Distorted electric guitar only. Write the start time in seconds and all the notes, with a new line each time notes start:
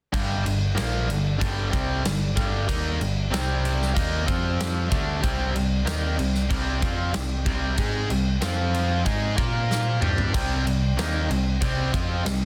0.12 G2 D3 G3
0.44 G2 D3
0.75 A#2 F3 A#3
1.08 G2 D3
1.38 G2 D3 G3
1.71 C3 G3 C4
2.03 G2 D3
2.36 G2 D3 G3
2.67 D#3 A#3 D#4
2.99 G2 D3
3.30 C3 G3 C4
3.94 D#3 A#3 D#4
4.26 F3 C4 F4
4.90 D3 A3 D4
5.22 C3 G3 C4
5.54 C3 G3
5.85 D#3 A#3 D#4
6.17 C3 G3
6.49 C3 G3 C4
6.81 F3 C4 F4
7.13 C3 G3
7.45 C3 G3 C4
7.77 G#3 D#4 G#4
8.10 C3 G3
8.41 F3 C4 F4
9.05 G#3 D#4 G#4
9.36 A#3 F4 A#4
10.01 G3 D4 G4
10.33 C3 G3 C4
10.65 C3 G3
10.97 D#3 A#3 D#4
11.29 C3 G3
11.61 C3 G3 C4
11.92 F3 C4 F4
12.25 C3 G3